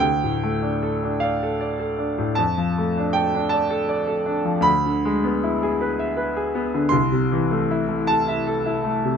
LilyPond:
\new Staff \with { instrumentName = "Grand piano" } { \time 12/8 \key d \dorian \tempo 4. = 52 << { g''4. f''4. a''4 g''8 a''4. | b''2. c'''4. a''8 r4 | } \\ { d,16 a,16 a16 d'16 a'16 d'16 d''16 a'16 d''16 a'16 d'16 a,16 f,16 f16 a16 d'16 a'16 d'16 d''16 a'16 d''16 a'16 d'16 f16 | d,16 d16 gis16 b16 e'16 gis'16 b'16 e''16 b'16 gis'16 b16 d16 c,16 c16 e16 a16 e'16 a16 a'16 e''16 a'16 e'16 a16 c16 | } >> }